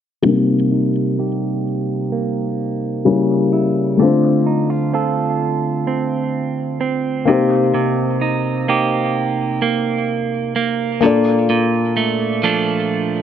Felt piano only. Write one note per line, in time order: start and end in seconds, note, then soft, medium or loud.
0.23 3.01 G3 medium
0.23 3.02 A#3 medium
0.23 3.02 C4 medium
0.27 3.03 D#4 medium
0.27 3.04 A#4 medium
3.05 3.99 G3 medium
3.05 4.00 A#3 medium
3.05 4.00 C#4 medium
3.05 4.00 E4 medium
3.05 4.01 A#4 medium
3.97 7.23 A3 medium
3.97 7.24 C4 medium
3.97 7.24 D4 medium
4.02 7.25 F4 medium
4.02 7.26 C5 medium
7.25 10.98 A#3 medium
7.25 10.98 C4 medium
7.25 10.99 D#4 medium
7.25 11.00 G4 medium
7.31 11.00 C5 medium
11.01 13.22 A#3 medium
11.01 13.22 D4 medium
11.01 13.22 F4 medium
11.05 13.22 A4 medium
11.05 13.22 D5 medium